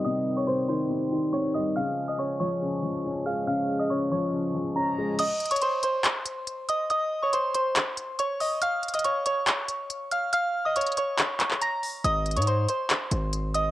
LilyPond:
<<
  \new Staff \with { instrumentName = "Synth bell" } { \time 4/4 \key c \phrygian \tempo 4 = 140 <ees'' ees'''>8. <des'' des'''>16 <c'' c'''>8 <c'' c'''>4. <des'' des'''>8 <ees'' ees'''>8 | <f'' f'''>8. <ees'' ees'''>16 <des'' des'''>8 <des'' des'''>2 <f'' f'''>8 | <f'' f'''>8. <ees'' ees'''>16 <des'' des'''>8 <des'' des'''>4. <bes'' bes'''>8 r8 | <ees'' ees'''>8. <des'' des'''>16 <c'' c'''>8 <c'' c'''>2 <ees'' ees'''>8 |
<ees'' ees'''>8. <des'' des'''>16 <c'' c'''>8 <c'' c'''>4. <des'' des'''>8 <ees'' ees'''>8 | <f'' f'''>8. <ees'' ees'''>16 <des'' des'''>8 <des'' des'''>2 <f'' f'''>8 | <f'' f'''>8. <ees'' ees'''>16 <des'' des'''>8 <des'' des'''>4. <bes'' bes'''>8 r8 | <ees'' ees'''>8. <des'' des'''>16 <c'' c'''>8 <c'' c'''>2 <ees'' ees'''>8 | }
  \new Staff \with { instrumentName = "Harmonium" } { \time 4/4 \key c \phrygian <ees g c' g'>1 | <f aes des' aes'>1~ | <f aes des' aes'>1 | r1 |
r1 | r1 | r1 | r1 | }
  \new Staff \with { instrumentName = "Grand piano" } { \clef bass \time 4/4 \key c \phrygian <c ees g c'>4 c8 ees8 c8 ees8 c'8 g8 | des4 des8 f8 des8 f8 des'8 aes8 | des4 des8 f8 des8 f8 des'8 aes8 | r1 |
r1 | r1 | r1 | r1 | }
  \new Staff \with { instrumentName = "808-style bass" } { \clef bass \time 4/4 \key c \phrygian r1 | r1 | r1 | r1 |
r1 | r1 | r1 | aes,,8. aes,8. r4 aes,,4. | }
  \new DrumStaff \with { instrumentName = "Drums" } \drummode { \time 4/4 r4 r4 r4 r4 | r4 r4 r4 r4 | r4 r4 r4 r4 | <cymc hh>8 hh32 hh32 hh32 hh32 hh8 hh8 <hc hh>8 hh8 hh8 hh8 |
hh4 hh8 hh8 <hc hh>8 hh8 hh8 hho8 | hh8 hh32 hh32 hh32 hh32 hh8 hh8 <hc hh>8 hh8 hh8 hh8 | hh4 hh32 hh32 hh32 hh32 hh8 <hc hh>8 <hc hh>16 hc16 hh8 hho8 | hh8 hh32 hh32 hh32 hh32 hh8 hh8 <hc hh>8 hh8 hh8 hh8 | }
>>